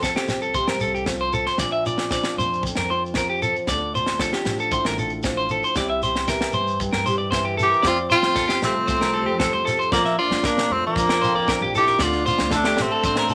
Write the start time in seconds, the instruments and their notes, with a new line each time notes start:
Already playing: upright bass F2, nylon-string guitar F2 A4
0.03 nylon-string guitar F3 C4, clean electric guitar A4, kick, snare, shekere
0.16 clean electric guitar G4, snare
0.28 upright bass C2, snare, shekere
0.42 clean electric guitar A4, shekere
0.54 nylon-string guitar C3, clean electric guitar C5, kick, shekere
0.68 upright bass C2, clean electric guitar A#4, snare
0.80 clean electric guitar A4, nylon-string guitar A4, shekere
0.95 clean electric guitar G4, shekere
1.06 nylon-string guitar F3, muted clean electric guitar stroke, kick, snare, shekere
1.21 clean electric guitar C5
1.33 clean electric guitar A4, shekere
1.46 clean electric guitar C5, snare, shekere
1.58 upright bass A#1, nylon-string guitar A#2 D4, clean electric guitar D5, kick, snare, shekere
1.72 clean electric guitar E5
1.86 nylon-string guitar F4, clean electric guitar D5, shekere
1.98 snare
2.11 nylon-string guitar F3 D4, clean electric guitar D5, kick, snare, shekere
2.24 snare
2.37 upright bass F2, clean electric guitar C5, shekere
2.53 shekere
2.63 nylon-string guitar F2, kick, shekere
2.75 upright bass F2, clean electric guitar A#4, snare
2.90 nylon-string guitar F4, clean electric guitar C5
3.06 shekere
3.14 nylon-string guitar F3, clean electric guitar A#4, kick, snare, shekere
3.30 clean electric guitar G4
3.42 clean electric guitar A4, shekere
3.56 shekere
3.67 upright bass D2, nylon-string guitar D3 D4, clean electric guitar D5, kick, snare, shekere
3.94 nylon-string guitar F4, clean electric guitar C5, shekere
4.06 snare
4.19 nylon-string guitar F3 D4, clean electric guitar A4, kick, snare, shekere
4.33 clean electric guitar G4, snare
4.45 upright bass A1, snare, shekere
4.59 clean electric guitar A4, shekere
4.72 nylon-string guitar A2, clean electric guitar C5, kick, shekere
4.85 upright bass A1, clean electric guitar A#4, snare
4.98 nylon-string guitar F4, clean electric guitar A4, shekere
5.10 shekere
5.23 nylon-string guitar F3, kick, snare, shekere
5.37 clean electric guitar C5
5.49 clean electric guitar A4, shekere
5.63 clean electric guitar C5, shekere
5.75 upright bass C2, nylon-string guitar C3 E4, clean electric guitar D5, kick, snare, shekere
5.90 clean electric guitar E5
6.03 nylon-string guitar G4, clean electric guitar C5, shekere
6.15 snare, shekere
6.28 nylon-string guitar E3 E4, clean electric guitar A#4, kick, snare, shekere
6.41 snare
6.53 upright bass G2, clean electric guitar C5, shekere
6.67 shekere
6.80 nylon-string guitar G2, kick, shekere
6.93 upright bass G2, clean electric guitar A#4, snare
7.06 nylon-string guitar G4, clean electric guitar C5, shekere
7.18 clean electric guitar D5
7.31 nylon-string guitar E3, clean electric guitar C5, kick, snare, shekere
7.45 clean electric guitar G4
7.57 alto saxophone E4, clean electric guitar A4, shekere
7.63 tenor saxophone G4
7.70 clean electric guitar A#4, shekere
7.83 upright bass F2, nylon-string guitar F3, alto saxophone C4, clean electric guitar D5, muted nylon-string guitar stroke, kick, snare, shekere
7.87 nylon-string guitar C4, tenor saxophone F4
8.10 alto saxophone C4, tenor saxophone F4, clean electric guitar C5, shekere
8.22 upright bass F2, snare, shekere
8.35 nylon-string guitar C4, clean electric guitar A4, kick, snare, shekere
8.48 clean electric guitar G4, snare
8.62 upright bass C2, nylon-string guitar F3 A3, alto saxophone A3, tenor saxophone C4, snare, shekere
8.87 upright bass C2, nylon-string guitar C4, clean electric guitar C5, kick, snare, shekere
9.01 clean electric guitar A#4, snare
9.14 nylon-string guitar C3 A4, clean electric guitar A4
9.26 upright bass F2, clean electric guitar G4
9.39 nylon-string guitar C4, clean electric guitar A4, kick, snare, shekere
9.53 upright bass F2, clean electric guitar C5
9.65 clean electric guitar A4, nylon-string guitar A4, snare, shekere
9.79 clean electric guitar C5, shekere
9.92 upright bass A#1, nylon-string guitar A#2, alto saxophone F3, tenor saxophone A#3, clean electric guitar D5, kick, snare, shekere
10.05 clean electric guitar E5, snare
10.18 alto saxophone D4, tenor saxophone F4, clean electric guitar D5
10.31 upright bass A#1, snare, shekere
10.43 alto saxophone A#3, tenor saxophone D4, nylon-string guitar D4, clean electric guitar A#4, kick, snare, shekere
10.58 snare
10.70 upright bass F2, nylon-string guitar F3 A#3, alto saxophone A3, tenor saxophone C4
10.86 alto saxophone F3, tenor saxophone A#3
10.96 upright bass F2, nylon-string guitar D4, kick, snare, shekere
11.09 clean electric guitar A#4, snare
11.21 nylon-string guitar F2 F4, clean electric guitar C5, shekere
11.35 upright bass A#1, clean electric guitar D5
11.48 nylon-string guitar D4, clean electric guitar A#4, kick, snare, shekere
11.61 upright bass A#1, clean electric guitar G4
11.75 alto saxophone E4, nylon-string guitar F4, tenor saxophone G4, clean electric guitar A4, shekere
11.87 clean electric guitar A#4, snare, shekere
11.99 upright bass D2, nylon-string guitar D3, alto saxophone D4, clean electric guitar D5, kick, snare, shekere
12.03 tenor saxophone F4
12.12 snare
12.26 alto saxophone D4, tenor saxophone F4, clean electric guitar C5, shekere
12.38 upright bass D2, snare, shekere
12.51 alto saxophone A3, nylon-string guitar D4, clean electric guitar A4, kick, snare, shekere
12.56 tenor saxophone D4
12.64 clean electric guitar G4, snare
12.77 upright bass A1, nylon-string guitar A3, alto saxophone A3, snare, shekere
12.82 tenor saxophone C4
12.92 clean electric guitar A4
13.03 upright bass A1, nylon-string guitar D4, clean electric guitar C5, kick, snare, shekere
13.16 clean electric guitar A#4, snare
13.29 nylon-string guitar A2 F4, clean electric guitar A4, shekere